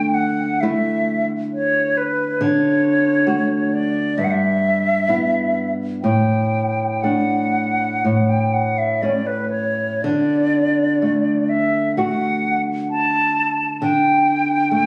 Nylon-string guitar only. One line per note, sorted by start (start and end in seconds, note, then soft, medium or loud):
0.00 2.37 D3 soft
0.00 0.61 A3 soft
0.63 2.38 A3 soft
0.63 2.38 E4 soft
2.41 4.14 D3 soft
3.27 4.14 A3 soft
3.27 4.14 F#4 soft
4.18 6.00 G2 soft
5.09 6.00 B3 soft
5.09 6.00 E4 soft
6.04 8.01 A2 soft
7.03 8.01 A3 soft
7.03 8.01 D4 soft
8.04 9.99 A2 soft
9.02 9.99 A3 soft
9.02 9.99 C#4 soft
10.04 13.77 D3 soft
11.02 11.96 A3 soft
11.97 13.77 A3 soft
11.97 13.78 F#4 soft
13.82 14.86 D3 soft
14.71 14.86 A3 soft